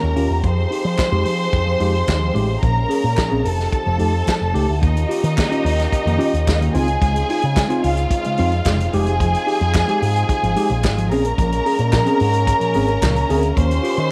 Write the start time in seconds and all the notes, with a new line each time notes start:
Already playing: D#3 A#3 C#4 F4 G4 A#4 A#5
0.03 D#2
0.16 D#2 C#4 F4 G4, open hi-hat
0.30 E2 F4 G4
0.43 F2 F3 C4 D#4 G#4 C5 C6, kick, closed hi-hat
0.71 D#4 G4, open hi-hat
0.85 F3
0.98 F3, kick, snare, clap, closed hi-hat
1.12 F2 G#3 D#4 G4
1.25 F3 D#4 G4, open hi-hat
1.53 F2 D#4 G4, kick, closed hi-hat
1.67 F3
1.80 F2 G#3 D#4 G4, open hi-hat
2.07 D#2 D#4 G4, kick, snare, clap, closed hi-hat
2.20 F3
2.34 A1 G#3 D#4 G4, open hi-hat
2.62 A#1 A#2 F3 G#3 A#3 C#4 A#4 A#5, kick, closed hi-hat
2.89 C#4 G#4, open hi-hat
3.04 A#2
3.17 A#2 F3, kick, snare, clap, closed hi-hat
3.30 A#1 C4 C#4 G#4
3.44 F1 F3 C4 D#4 G4 A4 A5, open hi-hat
3.60 snare
3.71 D#4 G4, kick, closed hi-hat
3.86 F1 F3
3.98 F2 A3 D#4 G4, open hi-hat
4.26 F3, kick, snare, clap, closed hi-hat
4.41 F1
4.54 C#2 A3 D#4 G4, open hi-hat
4.69 D2
4.81 D#2 D#3 A#3 C#4 D#4 F4 G4 D#5, kick, closed hi-hat
4.97 closed hi-hat
5.08 F4 G4, open hi-hat
5.24 D#3, closed hi-hat
5.38 D#3 A#3, kick, snare, clap, closed hi-hat
5.50 C#4 F4 G4, closed hi-hat
5.64 D#2 F4 G4, open hi-hat
5.79 snare, closed hi-hat
5.92 F4 G4, kick, closed hi-hat
6.05 F2 D#3 A#3, closed hi-hat
6.18 C#4 F4 G4, open hi-hat
6.34 D#2, closed hi-hat
6.47 D#2 F4 G4, kick, snare, clap, closed hi-hat
6.61 D#3 A#3, closed hi-hat
6.74 C#2 C#3 G#3 C4 D#4 F4 G#4 G#5, open hi-hat
6.88 closed hi-hat
7.02 C#2 C#3 G#3, kick, closed hi-hat
7.16 closed hi-hat
7.30 D#4 F4, open hi-hat
7.42 C#3, closed hi-hat
7.57 C#3 G#3, kick, snare, clap, closed hi-hat
7.69 C4 D#4 F4, closed hi-hat
7.84 C#2 D#4 F4 F5, open hi-hat
7.97 closed hi-hat
8.11 D#4 F4, kick, closed hi-hat
8.24 C#3 G#3, closed hi-hat
8.37 F2 C4 D#4 F4, open hi-hat
8.52 closed hi-hat
8.65 F1 C#3 G#3, kick, snare, clap, closed hi-hat
8.80 closed hi-hat
8.92 F1 F3 G#3 D#4 F4 G4 G#4 G#5, open hi-hat
9.06 D#4 G4, closed hi-hat
9.20 F3, kick, closed hi-hat
9.34 closed hi-hat
9.47 D#4 G4, open hi-hat
9.61 F2, closed hi-hat
9.74 F3, kick, snare, clap, closed hi-hat
9.88 G#3 D#4 G4, closed hi-hat
10.02 G#2 D#4 G4, open hi-hat
10.16 closed hi-hat
10.29 D#4 G4, kick, closed hi-hat
10.43 G#1 F3, closed hi-hat
10.56 G#3 D#4 G4, open hi-hat
10.70 A#1, closed hi-hat
10.83 G#1 D#4 G4, kick, snare, clap, closed hi-hat
10.98 F3, closed hi-hat
11.10 A#1 G#3 A#3 C4 C#4 G#4 A#4 A#5, open hi-hat
11.24 closed hi-hat
11.38 A#1 A#2 F3, kick, closed hi-hat
11.52 closed hi-hat
11.66 C#4 G#4, open hi-hat
11.78 A#2, closed hi-hat
11.93 A#2 F3, kick, snare, clap, closed hi-hat
12.06 C4 C#4 G#4, closed hi-hat
12.20 G#2 C#4 G#4, open hi-hat
12.33 closed hi-hat
12.47 C#4 G#4, kick, closed hi-hat
12.60 A#2 F3, closed hi-hat
12.74 G#1 C4 C#4 G#4, open hi-hat
12.88 closed hi-hat
13.02 C#2 A#2 F3, kick, snare, clap, closed hi-hat
13.16 closed hi-hat
13.30 D2 C4 C#4 G#4, open hi-hat
13.43 C#4 G#4, closed hi-hat
13.56 D#2 D#3 A#3 F4 G4 C5 C6, kick, closed hi-hat
13.71 closed hi-hat
13.83 F4 G4, open hi-hat
13.97 D#3, closed hi-hat